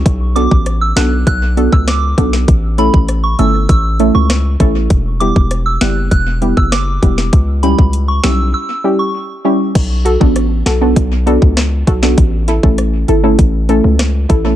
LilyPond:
<<
  \new Staff \with { instrumentName = "Synth bell" } { \time 4/4 \key b \minor \tempo 4 = 99 r8 d'''16 r8 e'''16 fis'''16 r16 fis'''16 r8 e'''16 d'''8. r16 | r8 b''16 r8 cis'''16 e'''16 r16 e'''16 r8 cis'''16 r4 | r8 d'''16 r8 e'''16 fis'''16 r16 fis'''16 r8 e'''16 d'''8. r16 | r8 b''16 r8 cis'''16 e'''16 r16 e'''16 r8 cis'''16 r4 |
r1 | r1 | }
  \new Staff \with { instrumentName = "Synth pluck" } { \time 4/4 \key b \minor r8 <b d' fis' a'>16 r8. <b d' fis' a'>16 r8. <b d' fis' a'>16 r8. <b d' fis' a'>16 r16 | r8 <a cis' e' a'>16 r8. <a cis' e' a'>16 r8. <a cis' e' a'>16 r8. <a cis' e' a'>16 r16 | r8 <g b e' g'>16 r8. <g b e' g'>16 r8. <g b e' g'>16 r8. <g b e' g'>16 r16 | r8 <g cis' e' g'>16 r8. <g cis' e' g'>16 r8. <g cis' e' g'>16 r8. <g cis' e' g'>16 r16 |
r8 <fis' a'>16 <b d' fis' a'>16 r8 <fis' a'>16 <b d' fis' a'>16 r8 <b d' fis' a'>16 r8. <fis' a'>16 <b d' fis' a'>16 | r8 <e' a'>16 <a cis' e' a'>16 r8 <e' a'>16 <a cis' e' a'>16 r8 <a cis' e' a'>16 r8. <e' a'>16 <a cis' e' a'>16 | }
  \new Staff \with { instrumentName = "808-style bass" } { \clef bass \time 4/4 \key b \minor b,,8. a,,8. b,,8 b,,8. cis,8. b,,8 | a,,8. a,,8. g,,8 a,,8. cis,8. a,,8 | e,,8. e,,8. fis,,8 e,,8. fis,,8. e,,8 | cis,8. cis,8. b,,8 r2 |
b,,8. a,,8. b,,8 b,,8. cis,8. b,,8 | a,,8. a,,8. g,,8 a,,8. cis,8. a,,8 | }
  \new DrumStaff \with { instrumentName = "Drums" } \drummode { \time 4/4 <hh bd>8 hh16 bd16 <hh ss>8 <hh sn>8 <hh bd>8 hh16 bd16 <hh ss sn>8 <hh bd>16 sn16 | <hh bd>8 hh16 bd16 <hh ss>8 hh8 <hh bd>8 hh8 <hh ss sn>8 <hh bd>8 | <hh bd>8 hh16 bd16 <hh ss>8 <hh sn>8 <hh bd>8 hh16 bd16 <hh ss sn>8 <hh bd>16 sn16 | <hh bd>8 hh16 bd16 hh8 <hh sn>8 r4 r4 |
<cymc hh bd>8 hh16 bd16 <hh ss>8 <hh sn>8 <hh bd>8 hh16 bd16 <hh ss sn>8 <hh bd>16 sn16 | <hh bd>8 hh16 bd16 <hh ss>8 hh8 <hh bd>8 hh8 <hh ss sn>8 <hh bd>8 | }
>>